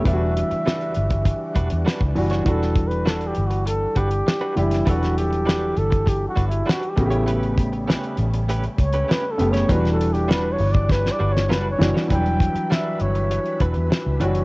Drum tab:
HH |x-xx-xxxx-xx-xox|x-xx-xxxx-xx--xx|xxxx--xxx-xx-xxx|xxxx-xxxxxxx--xx|
SD |----o-------o--o|-o--o-------o--o|-o--o-------o---|----o-------o--o|
BD |o------oo-o--o--|o-o-------o-----|o------oo-o---o-|--o-------o-----|

HH |xxxx--ox--------|xxxx--xxxxxx--xx|
SD |-o--o---oo-oo-oo|----o-------o---|
BD |o------oo-------|o-o-------o-----|